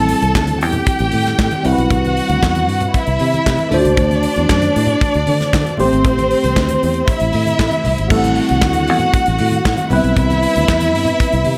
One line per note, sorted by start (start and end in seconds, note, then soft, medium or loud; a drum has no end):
0.00 0.12 A1 loud
0.00 1.60 G3 medium
0.00 1.63 C4 medium
0.00 1.61 E4 medium
0.00 0.59 A4 medium
0.00 1.62 A4 medium
0.00 0.60 A5 medium
0.09 open hi-hat medium
0.22 0.32 C2 loud
0.22 closed hi-hat medium
0.22 high conga medium
0.35 0.62 D2 medium
0.35 kick loud
0.35 snare loud
0.35 clap loud
0.47 closed hi-hat medium
0.47 high conga medium
0.61 0.81 E2 medium
0.61 1.63 G4 medium
0.61 1.63 G5 medium
0.61 open hi-hat medium
0.72 closed hi-hat soft
0.72 low conga medium
0.86 kick loud
0.86 closed hi-hat medium
0.86 muted conga soft
0.99 1.10 A1 loud
0.99 closed hi-hat soft
0.99 muted conga soft
1.11 1.32 A2 loud
1.11 open hi-hat medium
1.11 high conga medium
1.26 snare soft
1.26 closed hi-hat soft
1.26 high conga medium
1.39 1.49 A2 loud
1.39 kick loud
1.39 snare loud
1.39 clap medium
1.51 closed hi-hat soft
1.51 muted conga soft
1.51 high conga medium
1.63 1.75 C2 medium
1.63 3.67 G3 medium
1.63 3.67 C4 medium
1.63 3.68 E4 medium
1.63 2.92 F#4 medium
1.63 1.72 A#4 medium
1.63 2.91 F#5 loud
1.63 open hi-hat medium
1.63 low conga medium
1.73 3.71 B4 medium
1.78 1.88 B1 medium
1.78 closed hi-hat soft
1.91 2.20 C2 loud
1.91 kick loud
1.91 closed hi-hat medium
1.91 muted conga soft
1.91 low conga medium
2.05 closed hi-hat soft
2.05 muted conga soft
2.05 high conga medium
2.17 open hi-hat medium
2.29 2.39 D2 loud
2.29 closed hi-hat medium
2.29 high conga medium
2.43 2.69 E2 medium
2.43 kick loud
2.43 snare loud
2.43 clap medium
2.55 closed hi-hat medium
2.55 muted conga soft
2.55 high conga medium
2.69 2.88 G2 medium
2.69 open hi-hat medium
2.80 closed hi-hat soft
2.80 low conga medium
2.94 3.70 E4 medium
2.94 3.70 E5 medium
2.94 kick loud
2.94 closed hi-hat medium
2.94 muted conga soft
3.07 3.17 C2 medium
3.07 closed hi-hat soft
3.07 muted conga soft
3.19 3.39 C3 medium
3.19 open hi-hat medium
3.19 high conga medium
3.34 closed hi-hat soft
3.34 high conga medium
3.46 3.56 C3 loud
3.46 kick loud
3.46 snare loud
3.46 clap loud
3.58 closed hi-hat soft
3.58 muted conga soft
3.58 high conga medium
3.71 3.87 D2 medium
3.71 5.74 A3 medium
3.71 5.74 D4 medium
3.71 3.78 F4 soft
3.71 5.75 C5 medium
3.71 5.74 D5 loud
3.71 open hi-hat medium
3.71 low conga medium
3.79 5.78 F#4 medium
3.85 3.95 C#2 medium
3.85 closed hi-hat medium
3.97 4.26 D2 loud
3.97 kick loud
3.97 closed hi-hat medium
3.97 muted conga soft
3.97 low conga medium
4.10 closed hi-hat soft
4.10 high conga medium
4.23 open hi-hat medium
4.36 4.47 E2 loud
4.36 closed hi-hat medium
4.36 high conga medium
4.49 4.69 F#2 medium
4.49 kick loud
4.49 snare loud
4.49 clap loud
4.62 closed hi-hat medium
4.62 high conga medium
4.76 4.95 A2 medium
4.76 open hi-hat medium
4.86 closed hi-hat soft
4.86 low conga medium
5.01 kick loud
5.01 closed hi-hat medium
5.01 muted conga soft
5.14 5.24 D2 loud
5.14 closed hi-hat soft
5.14 muted conga soft
5.27 5.47 D3 medium
5.27 open hi-hat medium
5.27 high conga medium
5.41 snare soft
5.41 closed hi-hat soft
5.41 high conga medium
5.53 5.63 D3 loud
5.53 kick loud
5.53 snare loud
5.53 clap medium
5.65 closed hi-hat soft
5.65 muted conga soft
5.65 high conga medium
5.77 5.89 A1 medium
5.77 7.80 A3 medium
5.77 5.85 B3 medium
5.77 7.05 C4 medium
5.77 7.81 G4 medium
5.77 7.05 C5 loud
5.77 7.82 C5 medium
5.77 open hi-hat medium
5.77 low conga medium
5.85 7.84 C4 medium
5.93 6.05 G#1 medium
5.93 closed hi-hat soft
6.05 6.33 A1 medium
6.05 kick loud
6.05 closed hi-hat medium
6.05 muted conga soft
6.05 low conga medium
6.18 closed hi-hat soft
6.18 muted conga soft
6.18 high conga medium
6.31 open hi-hat medium
6.43 6.53 C2 medium
6.43 closed hi-hat medium
6.43 high conga medium
6.56 6.76 D2 medium
6.56 kick loud
6.56 snare loud
6.56 clap loud
6.69 closed hi-hat medium
6.69 high conga medium
6.83 7.02 E2 medium
6.83 open hi-hat medium
6.94 closed hi-hat soft
7.08 8.09 E4 medium
7.08 8.08 E5 medium
7.08 kick loud
7.08 closed hi-hat medium
7.08 muted conga soft
7.20 7.30 A1 medium
7.20 closed hi-hat soft
7.20 muted conga soft
7.32 7.53 A2 loud
7.32 open hi-hat medium
7.32 high conga medium
7.46 closed hi-hat soft
7.46 high conga medium
7.59 7.69 A2 medium
7.59 kick loud
7.59 snare loud
7.59 clap medium
7.71 closed hi-hat soft
7.71 muted conga soft
7.71 high conga medium
7.84 7.95 C2 medium
7.84 open hi-hat medium
7.84 low conga medium
7.98 8.08 G#1 medium
7.98 closed hi-hat medium
8.09 8.39 A1 loud
8.09 9.86 G3 medium
8.09 9.87 A3 medium
8.09 8.17 B3 medium
8.09 9.88 E4 medium
8.09 9.88 F#4 medium
8.09 9.88 A4 medium
8.09 9.88 F#5 medium
8.09 kick loud
8.09 crash loud
8.09 low conga medium
8.16 9.90 C4 medium
8.24 closed hi-hat soft
8.24 muted conga soft
8.24 high conga medium
8.35 open hi-hat medium
8.49 8.60 C2 medium
8.49 closed hi-hat medium
8.49 high conga medium
8.61 8.89 D2 loud
8.61 kick loud
8.61 snare loud
8.61 clap loud
8.73 closed hi-hat medium
8.73 muted conga soft
8.73 high conga medium
8.87 9.08 E2 medium
8.87 open hi-hat medium
8.99 closed hi-hat soft
8.99 low conga medium
9.14 kick loud
9.14 closed hi-hat medium
9.26 9.37 A1 loud
9.26 closed hi-hat soft
9.38 9.59 A2 loud
9.38 open hi-hat medium
9.38 high conga medium
9.52 closed hi-hat soft
9.52 high conga medium
9.65 9.75 A2 loud
9.65 kick loud
9.65 snare loud
9.65 clap medium
9.77 closed hi-hat soft
9.77 muted conga soft
9.77 high conga medium
9.90 10.01 C2 medium
9.90 11.58 G3 medium
9.90 11.58 B3 medium
9.90 11.58 C4 medium
9.90 11.58 E4 loud
9.90 11.58 E4 medium
9.90 11.58 B4 medium
9.90 11.58 E5 loud
9.90 open hi-hat medium
9.90 low conga medium
10.04 10.13 B1 medium
10.04 closed hi-hat soft
10.17 10.45 C2 loud
10.17 kick loud
10.17 closed hi-hat medium
10.17 low conga medium
10.30 closed hi-hat soft
10.30 high conga medium
10.43 open hi-hat medium
10.55 10.66 D2 loud
10.55 closed hi-hat medium
10.55 high conga medium
10.68 10.95 E2 medium
10.68 kick loud
10.68 snare loud
10.68 clap loud
10.80 closed hi-hat medium
10.80 high conga medium
10.95 11.14 G2 medium
10.95 open hi-hat medium
11.05 closed hi-hat soft
11.05 low conga medium
11.20 kick loud
11.20 closed hi-hat medium
11.32 11.42 C2 medium
11.32 closed hi-hat soft
11.44 11.58 C3 medium
11.44 open hi-hat medium
11.44 high conga medium